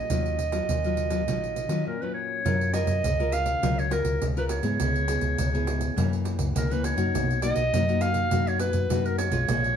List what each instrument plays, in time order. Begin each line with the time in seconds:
Already playing: clarinet D#5
0.10 fingered electric bass D#2, nylon-string guitar D#3 F#3 C#4 F4, pandeiro
0.26 pandeiro
0.39 pandeiro
0.52 nylon-string guitar F#3 C#4 F4, pandeiro
0.69 fingered electric bass D#2, nylon-string guitar A#2, pandeiro
0.84 nylon-string guitar F#3 C#4 F4, pandeiro
0.97 pandeiro
1.10 nylon-string guitar F#3 C#4 F4, pandeiro
1.27 fingered electric bass A#1, nylon-string guitar D#3 F#3 C#4 F4, pandeiro
1.44 pandeiro
1.56 pandeiro
1.69 fingered electric bass D#3, nylon-string guitar F#3 C#4 F4, pandeiro
1.86 nylon-string guitar A#2, clarinet A#4
2.01 nylon-string guitar F#3 C#4 F4, clarinet B4
2.14 clarinet C#5
2.45 fingered electric bass F#2, nylon-string guitar F#3 C#4 F4 A#4, pandeiro
2.61 pandeiro
2.73 nylon-string guitar C#4 F4 A#4, clarinet D#5, pandeiro
2.87 fingered electric bass F#2, pandeiro
3.04 fingered electric bass C#2, nylon-string guitar C#3, pandeiro
3.19 nylon-string guitar C#4 F4 A#4, pandeiro
3.32 clarinet F5, pandeiro
3.46 pandeiro
3.62 fingered electric bass C#2, nylon-string guitar F#3 C#4 F4 A#4, pandeiro
3.79 clarinet C#5, pandeiro
3.90 nylon-string guitar C#4 F4 A#4, clarinet A#4, pandeiro
4.05 fingered electric bass C#2, pandeiro
4.21 fingered electric bass C#2, nylon-string guitar C#3, pandeiro
4.36 nylon-string guitar C#4 F4 A#4, clarinet B4, pandeiro
4.49 clarinet C#5, pandeiro
4.63 fingered electric bass G#2, nylon-string guitar B3 E4 G#4, pandeiro
4.80 fingered electric bass C#2, nylon-string guitar C#3, pandeiro
4.96 pandeiro
5.08 nylon-string guitar B3 E4 G#4, pandeiro
5.21 fingered electric bass C#2, pandeiro
5.38 fingered electric bass C#2, nylon-string guitar G#2, pandeiro
5.54 nylon-string guitar B3 E4 G#4, pandeiro
5.67 pandeiro
5.81 pandeiro
5.96 nylon-string guitar F#2 E3 A#3 C#4, fingered electric bass F#2, pandeiro
6.13 pandeiro
6.25 pandeiro
6.39 fingered electric bass C#2, pandeiro
6.55 fingered electric bass C#2, nylon-string guitar C#3 E3 A#3 C#4, clarinet A#4, pandeiro
6.70 nylon-string guitar E3 A#3 C#4, clarinet B4, pandeiro
6.84 clarinet C#5, pandeiro
6.97 fingered electric bass F#2, nylon-string guitar A#3 D#4 F#4, pandeiro
7.14 fingered electric bass B1, nylon-string guitar B2, pandeiro
7.31 pandeiro
7.42 nylon-string guitar A#3 D#4 F#4, clarinet D#5, pandeiro
7.56 fingered electric bass B1, pandeiro
7.73 nylon-string guitar F#2 A#3 D#4 F#4, fingered electric bass F#2, pandeiro
7.88 nylon-string guitar A#3 D#4 F#4, pandeiro
8.01 clarinet F5, pandeiro
8.14 pandeiro
8.31 fingered electric bass F#2, nylon-string guitar B2 A#3 D#4 F#4, pandeiro
8.47 clarinet C#5, pandeiro
8.59 clarinet B4, pandeiro
8.73 fingered electric bass F#2, pandeiro
8.89 nylon-string guitar F#2 A#3 D#4 F#4, fingered electric bass F#2, pandeiro
9.06 clarinet A#4, pandeiro
9.18 clarinet C#5, pandeiro
9.31 fingered electric bass B1, nylon-string guitar G#3 C#4 F4, pandeiro
9.48 fingered electric bass A#1, nylon-string guitar A#2, pandeiro
9.64 pandeiro